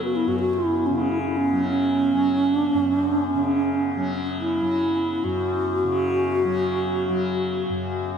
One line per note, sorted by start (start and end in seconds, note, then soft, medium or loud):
0.00 0.26 F#2 medium
0.00 0.90 C#3 medium
0.00 1.52 F#3 soft
0.00 7.50 B3 soft
0.05 0.17 F#4 medium
0.16 0.29 E4 medium
0.27 2.74 F#2 medium
0.27 0.39 F#4 medium
0.39 0.55 F#4 medium
0.53 0.88 E4 medium
0.86 3.34 C#3 medium
0.86 0.97 C#4 medium
0.95 1.03 E4 medium
1.02 1.11 C#4 medium
1.09 1.21 E4 medium
1.20 1.30 C#4 medium
1.28 1.38 E4 medium
1.37 1.67 C#4 medium
1.52 2.12 F#3 medium
1.68 2.54 C#4 medium
2.12 3.97 F#3 medium
2.54 2.77 D4 medium
2.74 5.23 F#2 medium
2.74 3.02 C#4 medium
3.02 3.25 D4 medium
3.25 4.10 C#4 medium
3.35 5.84 C#3 medium
3.97 4.61 F#3 medium
4.40 5.26 E4 medium
4.61 6.45 F#3 medium
5.24 7.69 F#2 medium
5.24 7.62 F#4 medium
5.84 8.18 C#3 medium
6.45 7.09 F#3 medium
7.09 8.18 F#3 medium
7.69 8.18 F#2 medium